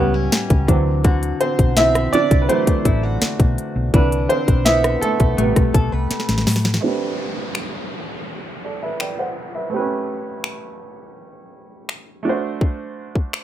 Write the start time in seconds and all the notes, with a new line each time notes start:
Already playing: C#2 A2 G3 B3 C#4 E4 F#4 G4 C#5 E5 F#5 G5
0.14 C#4
0.32 snare, closed hi-hat
0.50 C#2, kick, closed hi-hat
0.68 D2 D3 E3 F#3 C4, kick, closed hi-hat
1.04 D3 F#4, kick, closed hi-hat
1.23 closed hi-hat
1.41 C4 C5, closed hi-hat
1.59 B1, kick, closed hi-hat
1.77 C4 E4 E5, snare, closed hi-hat
1.95 cross-stick, closed hi-hat
2.13 D4 D5, muted fingered electric bass stroke, closed hi-hat
2.31 C2, kick, closed hi-hat
2.42 B4
2.49 E3 F#3 A3 C4 C5, closed hi-hat
2.67 kick, closed hi-hat
2.85 A1 E4, kick, closed hi-hat
3.03 F#4
3.22 snare, closed hi-hat
3.40 B1, kick, closed hi-hat
3.58 closed hi-hat
3.76 B1
3.94 C2 D3 E3 D4 B4, kick, closed hi-hat
4.12 closed hi-hat
4.29 C4 C5, closed hi-hat
4.48 B1, kick, closed hi-hat
4.65 B3 E4 E5, snare, closed hi-hat
4.84 cross-stick, closed hi-hat
5.01 A3 A4, muted fingered electric bass stroke, closed hi-hat
5.20 B1, kick, closed hi-hat
5.38 A1 C3 G3 A3 B3, closed hi-hat
5.56 B1, kick, cross-stick, closed hi-hat
5.74 B1 A4, kick, closed hi-hat
5.92 C2 B4
6.11 snare, closed hi-hat
6.20 snare
6.29 A1, snare, closed hi-hat
6.38 snare
6.47 A2, snare, open hi-hat
6.56 snare
6.65 snare
6.74 snare
6.81 A3 C4 D4, downlifter
6.86 G4 B4
7.55 finger snap
8.65 A4 D5
8.83 B4 E5
9.00 D5 G5, finger snap
9.19 C5 F#5
9.55 B4 E5
9.70 A3 C4
9.74 G4 B4
9.78 C#4
10.44 finger snap
11.89 finger snap
12.23 A3 D4
12.27 F#4 C5
12.61 kick
13.15 kick
13.33 finger snap